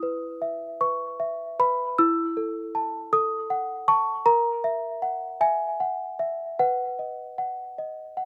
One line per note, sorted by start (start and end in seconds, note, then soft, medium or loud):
0.00 1.95 E4 soft
0.00 0.65 B4 soft
0.00 0.80 D#6 medium
0.42 1.04 E5 soft
0.81 1.43 B4 soft
0.81 1.59 C#6 medium
1.20 1.83 E5 soft
1.59 1.99 B4 soft
1.59 1.99 B5 medium
1.99 4.22 E4 medium
1.99 3.13 E6 medium
2.37 2.97 A4 soft
2.75 3.35 A5 soft
3.13 3.73 A4 medium
3.13 3.88 D#6 medium
3.50 4.11 F#5 medium
3.88 4.26 A5 medium
3.88 4.26 C#6 medium
4.26 6.55 A#4 medium
4.26 5.41 A#5 medium
4.64 5.26 E5 medium
5.02 5.64 F#5 soft
5.41 6.03 E5 medium
5.41 6.59 G#5 medium
5.80 6.43 F#5 medium
6.19 6.59 E5 medium
6.59 8.25 B4 medium
6.59 7.37 F#5 medium
6.99 7.62 D#5 soft
7.38 8.02 F#5 soft
7.78 8.25 D#5 soft
8.17 8.25 F#5 soft